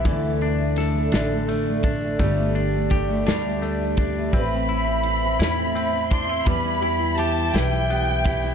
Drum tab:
RD |xxxxxx|xxxxxx|xxxxxx|xxxxxx|
SD |--oo--|---o--|---o--|---o--|
BD |o----o|o-o--o|o----o|o----o|